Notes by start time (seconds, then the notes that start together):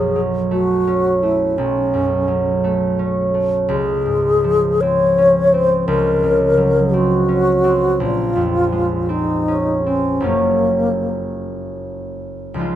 Already playing: B1 F#2 B3 G#4
0.16 F#3
0.51 A3 F#4
0.87 C#4
1.23 A3 E4
1.58 B1 C#4
1.94 F#2
2.28 F#3
2.64 A3
2.99 C#4
3.34 A3
3.69 C#2 G#4
4.06 G#2
4.44 F3
4.81 C4 C#5
5.18 C#4
5.53 C4 C5
5.88 C#2 A#4
6.23 C#3
6.57 F#3
6.94 C4 F#4
7.29 C#4
7.64 C4
8.00 A#1 F4
8.36 F2
8.72 G#3
9.09 C4 D#4
9.48 C#4
9.86 C4 C#4
10.20 F#1 F#3 A#3 C#4 F4
10.26 A#3
12.54 C#2 F3 G#3
12.59 D#4 F4